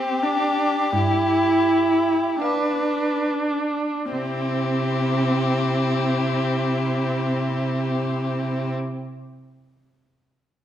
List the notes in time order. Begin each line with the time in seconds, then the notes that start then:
Already playing: C4 G4
0.23 D4
0.92 G2 E4
2.42 D4 B4 F5
4.12 C3 C4 E4 G4